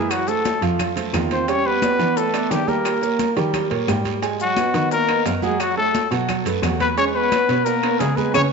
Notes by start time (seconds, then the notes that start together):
Already playing: F#2 E3 G#3 E4 G#4 E5
0.10 F#3 F#4, high bongo, high timbale, long guiro, claves, maracas
0.28 A3 A4 C5, high conga, maracas
0.45 high bongo, high conga, high timbale, low timbale, short guiro, maracas
0.62 F2 F3 F4 F5, high conga, high timbale, short guiro, maracas
0.79 high bongo, high conga, low conga, high timbale, long guiro, claves, maracas
0.96 A3 A4 C5, high bongo, high conga, low conga, high timbale, maracas
1.13 E2 D#3 F4 F5, high bongo, low bongo, high conga, high timbale, low timbale, short guiro, claves, maracas
1.31 C4 C5, high bongo, high conga, high timbale, short guiro, maracas
1.48 G3 C#4 G4 C#5 G5, high bongo, high conga, high timbale, long guiro, maracas
1.65 B3 B4, high conga
1.82 B3 B4 D5, high bongo, high conga, high timbale, low timbale, short guiro, claves, maracas
1.99 E3 B3 B4 D5, high bongo, high conga, high timbale, short guiro, maracas
2.16 A3 A4, high bongo, high conga, long guiro, maracas
2.34 B3 B4 D5, high bongo, high conga, high timbale, claves, maracas
2.51 D#3 G3 G4, high bongo, low bongo, high conga, high timbale, low timbale, short guiro, maracas
2.67 G3 A#3 G4 A#4 G5, high bongo, high conga, short guiro, maracas
2.85 high bongo, high conga, high timbale, long guiro, claves, maracas
3.02 A#3 A#4 C#5, high conga, maracas
3.19 high bongo, high conga, high timbale, low timbale, short guiro, maracas
3.36 D#3 G3 G4 G5, high conga, high timbale, short guiro, maracas
3.54 high bongo, high conga, low conga, high timbale, long guiro, claves, maracas
3.71 A#2 A#3 A#4 C#5, high bongo, high conga, low conga, high timbale
3.88 G#2 G3 G4 G5, high bongo, low bongo, high conga, high timbale, low timbale, short guiro, claves, maracas
4.05 high bongo, high conga, high timbale, short guiro, maracas
4.22 G#3 G#4 G#5, high bongo, high conga, high timbale, long guiro, maracas
4.39 F#3 F#4, high conga, maracas
4.57 B3 B4 D#5, high bongo, high conga, high timbale, low timbale, short guiro, claves, maracas
4.74 D#3 B3 B4 D#5, high conga, high timbale, short guiro, maracas
4.91 A#3 A#4, high bongo, high conga, long guiro, maracas
5.08 B3 B4 D#5, high bongo, high conga, high timbale, claves
5.25 F#2, high bongo, low bongo, high conga, high timbale, low timbale, short guiro, maracas
5.42 F#3 G#3 F#4 G#4 F#5, high bongo, high conga, short guiro, maracas
5.60 F#3 F#4, high bongo, high conga, high timbale, long guiro, claves, maracas
5.77 A3 A4 C#5, high conga
5.94 high bongo, high conga, high timbale, low timbale, short guiro, maracas
6.11 B2 F#3 F#4 F#5, high bongo, high conga, high timbale, short guiro, maracas
6.28 high bongo, high conga, low conga, high timbale, long guiro, claves, maracas
6.45 F#2 A3 A4 B4, high bongo, high conga, high timbale, maracas
6.63 E2 F#3 F#4 F#5, high bongo, low bongo, high conga, high timbale, low timbale, short guiro, claves, maracas
6.80 B3 B4, high bongo, high conga, high timbale, short guiro, maracas
6.97 G#3 C#4 G#4 C#5 G#5, high bongo, high conga, high timbale, long guiro, maracas
7.14 B3 B4, high conga
7.31 B3 B4 C#5, high bongo, high conga, high timbale, low timbale, short guiro, claves, maracas
7.48 B2 B3 B4 C#5, high bongo, high conga, high timbale, short guiro, maracas
7.65 A#3 A#4, high bongo, high conga, long guiro, maracas
7.83 B3 B4 C#5, high bongo, high conga, high timbale, claves
7.99 C#3 G#3 G#4, high bongo, low bongo, high conga, high timbale, low timbale, short guiro, maracas
8.16 G#3 B3 G#4 B4 G#5, high bongo, high conga, short guiro, maracas
8.34 C#3 C#4 G#4 B4 C#5, low bongo, high conga, high timbale, long guiro, claves, maracas